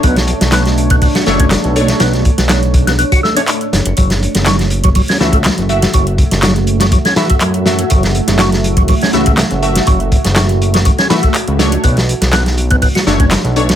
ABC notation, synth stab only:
X:1
M:4/4
L:1/16
Q:"Swing 16ths" 1/4=122
K:F#m
V:1 name="Synth stab"
[A,Dc]8- [A,Dc]2 [A,Dc] z3 [A,Dc]2- | [A,Dc]8- [A,Dc]2 z [A,Dc] z4 | z8 z2 [A,Fe] z3 [A,Fe]2- | [A,Fe]8- [A,Fe]2 [A,Fe] z3 [A,Fe]2- |
[A,Fe]8- [A,Fe]2 [A,Fe] z3 [A,Fe]2- | [A,Fe]8- [A,Fe]2 [A,Fe] z3 [A,Dc]2- | [A,Dc]8- [A,Dc]2 [A,Dc] z3 [A,Dc]2 |]